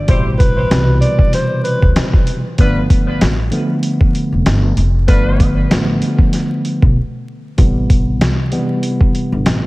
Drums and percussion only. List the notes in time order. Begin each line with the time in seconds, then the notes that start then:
0.08 kick, closed hi-hat
0.40 kick, closed hi-hat
0.71 snare, closed hi-hat
1.02 closed hi-hat
1.19 kick
1.33 snare, closed hi-hat
1.65 closed hi-hat
1.82 kick
1.96 snare, closed hi-hat
2.14 kick
2.27 closed hi-hat
2.58 kick, closed hi-hat
2.90 kick, closed hi-hat
3.21 snare, closed hi-hat
3.52 closed hi-hat
3.83 closed hi-hat
4.01 kick
4.15 closed hi-hat
4.46 snare, closed hi-hat
4.77 closed hi-hat
5.08 kick, closed hi-hat
5.40 kick, closed hi-hat
5.71 snare, closed hi-hat
6.02 closed hi-hat
6.18 kick
6.33 snare, closed hi-hat
6.65 closed hi-hat
6.82 kick
7.58 kick, closed hi-hat
7.90 kick, closed hi-hat
8.21 snare, closed hi-hat
8.52 closed hi-hat
8.83 closed hi-hat
9.01 kick
9.15 closed hi-hat
9.46 snare, closed hi-hat